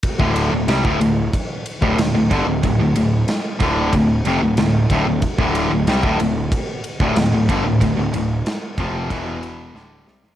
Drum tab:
RD |x-x-x-x-x-x-x-x-|x-x-x-x-x-x-x-x-|x-x-x-x-x-x-x-x-|x-x-x-x-x-x-----|
SD |----o-------o---|----o-------o---|----o-------o---|----o-------o-oo|
BD |oo---o--o--o--o-|o-----o-o-----o-|oo---o--o--o--o-|o-----o-o-------|